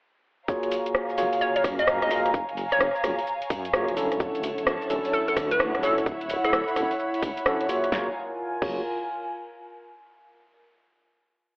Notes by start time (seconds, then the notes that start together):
0.48 A#3 F4 F#4 G#4 C#5 F5 G#5 A#5, kick, shaker
0.59 F5, closed hi-hat, shaker
0.71 A#5, open hi-hat, shaker
0.86 closed hi-hat, shaker
0.95 cross-stick, shaker
1.09 shaker
1.18 F#1 A#3 F4 F#4 G#4 C#5, open hi-hat, shaker
1.33 open hi-hat, shaker
1.41 C#5, shaker
1.56 C#5, closed hi-hat, shaker
1.64 F#2, kick, cross-stick, open hi-hat, shaker
1.79 D#5, closed hi-hat, shaker
1.88 cross-stick, shaker
2.02 F#1 D#5, cross-stick, closed hi-hat
2.11 A#3 F4 F#4 G#4 D#5 F5, open hi-hat, shaker
2.26 F#1, cross-stick, closed hi-hat, shaker
2.34 kick, shaker
2.49 closed hi-hat, shaker
2.57 open hi-hat, shaker
2.72 C#5, cross-stick, closed hi-hat, shaker
2.81 cross-stick, shaker
2.95 shaker
3.04 F#1 A#3 F4 F#4 G#4 C#5, cross-stick, open hi-hat, shaker
3.19 open hi-hat, shaker
3.27 shaker
3.42 closed hi-hat, shaker
3.50 F#2, kick, open hi-hat, shaker
3.65 closed hi-hat, shaker
3.74 A#3 F4 F#4 G#4 C#5, cross-stick, shaker
3.88 F#1, closed hi-hat
3.97 F#3 C#4 D4 E4 A4, open hi-hat, shaker
4.12 D1, cross-stick, closed hi-hat, shaker
4.20 E4 E5 F#5 A5, kick, shaker
4.35 closed hi-hat, shaker
4.43 open hi-hat, shaker
4.58 closed hi-hat, shaker
4.63 C#5, cross-stick, shaker
4.81 shaker
4.89 D1 F#3 C#4 D4 E4 A4 F#5, open hi-hat, shaker
5.05 open hi-hat, shaker
5.13 A4, shaker
5.28 A4, closed hi-hat, shaker
5.36 D2, kick, cross-stick, open hi-hat, shaker
5.51 B4, closed hi-hat, shaker
5.60 cross-stick, shaker
5.75 D1, cross-stick, closed hi-hat
5.83 F#3 C#4 D4 E4 A4 C#5, open hi-hat, shaker
5.98 D1, cross-stick, closed hi-hat, shaker
6.06 B5, kick, shaker
6.21 closed hi-hat, shaker
6.30 open hi-hat, shaker
6.44 A4, cross-stick, closed hi-hat, shaker
6.53 cross-stick, shaker
6.68 shaker
6.76 D1 F#3 C#4 D4 E4 A4, cross-stick, open hi-hat, shaker
6.91 open hi-hat, shaker
6.99 shaker
7.14 closed hi-hat, shaker
7.23 D2, kick, open hi-hat, shaker
7.37 closed hi-hat, shaker
7.46 F#3 C#4 D4 E4 A4, cross-stick, shaker
7.61 closed hi-hat
7.69 A#3 F4 F#4 G#4 C#5, open hi-hat, shaker
7.84 cross-stick, closed hi-hat, shaker
7.92 F#1 A#3 F4 F#4 G#4 C#5 F5 G#5 A#5, kick, snare
8.01 A#4
8.09 G#5
8.62 F#1 A#3 F4 F#4 G#4 C#5, kick, crash